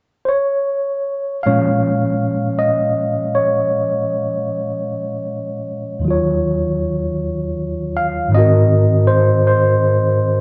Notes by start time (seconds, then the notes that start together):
0.25 C5 C#5
1.43 A#2 F3 G#3 C#5 F5
1.47 C#4
2.59 D#5
3.35 C#5
5.99 D#2 D#3
6.04 F#3 F4
6.11 C#5
7.97 F5
8.28 G#2 D#3
8.34 C4 F#4 D#5
8.39 A#4
9.07 C5
9.47 C5